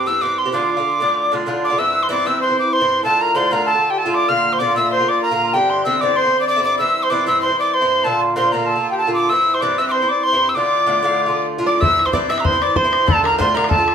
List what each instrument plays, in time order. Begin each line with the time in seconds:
0.06 bouzouki G2 E3 C4 G4, tin whistle E6
0.21 bouzouki G2 E3 C4 G4, tin whistle D6
0.38 tin whistle C6
0.45 bouzouki E3 C4 G4
0.52 bouzouki A2 D3 D4 F4, tin whistle D6
0.77 bouzouki D3 D4 F4
1.00 bouzouki A2 D3 D4 F4
1.32 bouzouki A2 D3 D4 F4
1.46 bouzouki A2 D3 D4 F4
1.64 accordion D5, tin whistle D6
1.70 bouzouki D3 D4 F4
1.77 bouzouki G2 E3 C4 E4, accordion E5, tin whistle E6
2.03 tin whistle C6
2.09 bouzouki G2 E3 C4 E4, accordion D5, tin whistle D6
2.25 bouzouki G2 E3 C4 E4, accordion E5, tin whistle E6
2.40 accordion C5, tin whistle C6
2.49 bouzouki E3 C4 E4
2.59 tin whistle D6
2.71 accordion C5, tin whistle C6
2.81 bouzouki G2 E3 C4 E4
3.03 bouzouki A2 D3 A3 F4, accordion A4, tin whistle A5
3.20 accordion A#4, tin whistle A#5
3.35 bouzouki A2 D3 A3 F4, accordion C5, tin whistle C6
3.51 bouzouki A2 D3 A3 F4, accordion A#4, tin whistle A#5
3.65 accordion A4, tin whistle A5
3.75 bouzouki D3 A3
3.90 accordion G4, tin whistle G5
3.97 accordion A4, tin whistle A5
4.06 bouzouki A2 D3 A3 F4
4.14 accordion D5, tin whistle D6
4.29 bouzouki A#2 D3 A#3 F4, accordion F5, tin whistle F6
4.53 accordion C5, tin whistle C6
4.59 bouzouki A#2 D3 A#3 F4, accordion D5, tin whistle D6
4.76 bouzouki A#2 D3 A#3 F4, accordion E5, tin whistle E6
4.91 accordion C5, tin whistle C6
4.99 bouzouki D3 A#3 F4
5.08 accordion D5, tin whistle D6
5.23 accordion A#4, tin whistle A#5
5.31 bouzouki A#2 D3 A#3 F4, accordion A#4
5.44 accordion A#4
5.53 bouzouki G2 D3 C4 E4, accordion G4, tin whistle G5
5.70 tin whistle C6
5.85 bouzouki G2 D3 C4 E4, accordion E5, tin whistle E6
6.01 bouzouki G2 D3 C4 E4, accordion D5, tin whistle D6
6.16 accordion C5, tin whistle C6
6.25 bouzouki D3 C4 E4
6.40 accordion D5, tin whistle D6
6.48 accordion D5, tin whistle D6
6.56 bouzouki G2 D3 C4 E4
6.64 accordion D5, tin whistle D6
6.79 bouzouki G2 E3 C4 E4, accordion E5, tin whistle E6
7.03 accordion C5, tin whistle C6
7.10 bouzouki G2 E3 C4 E4, accordion D5, tin whistle D6
7.26 bouzouki G2 E3 C4 E4, accordion E5, tin whistle E6
7.41 accordion C5, tin whistle C6
7.49 bouzouki E3 C4 E4
7.59 accordion D5, tin whistle D6
7.74 accordion C5, tin whistle C6
7.81 bouzouki G2 E3 C4 E4
8.04 bouzouki A#2 D3 A#3 F4, accordion A4, tin whistle A5
8.36 bouzouki A#2 D3 A#3 F4, accordion C5, tin whistle C6
8.52 bouzouki A#2 D3 A#3 F4, accordion A#4, tin whistle A#5
8.63 accordion A#4, tin whistle A5
8.68 accordion A4
8.76 bouzouki D3 A#3 F4
8.90 accordion G4, tin whistle G5
8.98 accordion A4, tin whistle A5
9.07 bouzouki A#2 D3 A#3 F4
9.14 tin whistle D6
9.30 bouzouki G2 E3 C4 E4, accordion E5, tin whistle E6
9.54 accordion C5, tin whistle C6
9.61 bouzouki G2 E3 C4 E4, accordion D5, tin whistle D6
9.78 bouzouki G2 E3 C4 E4, accordion E5, tin whistle E6
9.88 tin whistle C6 D6
9.93 accordion C5
10.02 bouzouki E3 C4 E4
10.09 accordion D5, tin whistle D6
10.24 accordion C5, tin whistle C6
10.33 bouzouki G2 E3 C4 E4
10.49 tin whistle E6
10.55 bouzouki A2 D3 A3 F4, accordion D5, tin whistle D6
10.87 bouzouki A2 D3 A3 F4
11.03 bouzouki A2 D3 A3 F4
11.26 bouzouki D3 A3 F4
11.58 bouzouki A2 D3 A3 F4
11.67 five-string banjo D5, accordion D5, tin whistle D6
11.81 bouzouki G2 E3 C4 E4, five-string banjo E5, accordion E5, tin whistle E6, bodhran
11.99 bodhran
12.06 accordion C5, five-string banjo C5, tin whistle C6, bodhran
12.13 bouzouki G2 E3 C4 E4, five-string banjo D5, accordion D5, tin whistle D6, bodhran
12.29 bouzouki G2 E3 C4 E4, five-string banjo E5, accordion E5, tin whistle E6, bodhran
12.38 tin whistle A#5, bodhran
12.45 five-string banjo C5, accordion C5, tin whistle C6, bodhran
12.52 bouzouki E3 C4 E4
12.61 accordion D5, tin whistle D6, bodhran
12.76 five-string banjo C5, accordion C5, tin whistle C6, bodhran
12.84 bouzouki G2 E3 C4 E4
12.93 bodhran
13.06 bouzouki A2 D3 A3 F4, five-string banjo A4, accordion A4, tin whistle A5, bodhran
13.24 five-string banjo A#4, accordion A#4, tin whistle A#5, bodhran
13.33 bodhran
13.38 bouzouki A2 D3 A3 F4, five-string banjo C5, accordion C5, tin whistle C6, bodhran
13.54 bouzouki A2 D3 A3 F4, five-string banjo A#4, accordion A#4, tin whistle A#5, bodhran
13.64 bodhran
13.69 five-string banjo A4, accordion A4, tin whistle A5, bodhran
13.78 bouzouki D3 A3 F4
13.88 bodhran